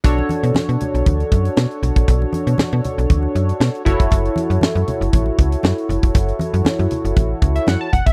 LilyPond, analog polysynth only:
\new Staff \with { instrumentName = "Analog polysynth" } { \time 4/4 \key b \minor \tempo 4 = 118 << { r1 | r1 | r1 | r2 r8. e''16 fis''16 a''16 fis''16 e''16 | } \\ { <d' fis' a' cis''>1~ | <d' fis' a' cis''>2.~ <d' fis' a' cis''>8 <e' fis' a' cis''>8~ | <e' fis' a' cis''>1~ | <e' fis' a' cis''>2.~ <e' fis' a' cis''>8 r8 | } >> }